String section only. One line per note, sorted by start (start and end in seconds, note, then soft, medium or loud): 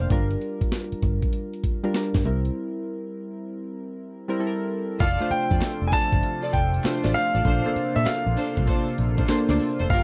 4.99 5.18 F4 loud
4.99 5.18 A4 medium
4.99 5.18 D5 loud
5.50 5.60 F4 medium
5.50 5.60 A4 medium
5.50 5.60 D5 medium
5.91 6.10 F4 medium
5.91 6.10 A4 medium
5.91 6.10 D5 medium
6.42 6.52 F4 medium
6.42 6.52 A4 medium
6.42 6.52 D5 medium
7.03 7.13 F4 medium
7.03 7.13 A4 medium
7.03 7.13 D5 medium
7.34 7.44 F4 medium
7.34 7.43 A4 medium
7.34 7.44 D5 medium
7.44 7.63 D4 loud
7.44 7.63 A4 medium
7.44 7.63 C5 loud
7.95 8.05 D4 medium
7.95 8.05 A4 medium
7.95 8.05 C5 medium
8.36 8.55 D4 medium
8.36 8.55 A4 medium
8.36 8.55 C5 medium
8.67 8.85 D4 medium
8.67 8.85 A4 medium
8.67 8.86 C5 medium
9.18 9.27 D4 medium
9.18 9.28 A4 medium
9.18 9.28 C5 medium
9.48 9.58 D4 medium
9.48 9.58 A4 medium
9.48 9.58 C5 medium
9.79 9.89 D4 medium
9.79 9.89 A4 medium
9.79 9.89 C5 medium
9.90 10.03 F4 medium
9.90 10.03 G4 medium
9.90 10.03 A#4 loud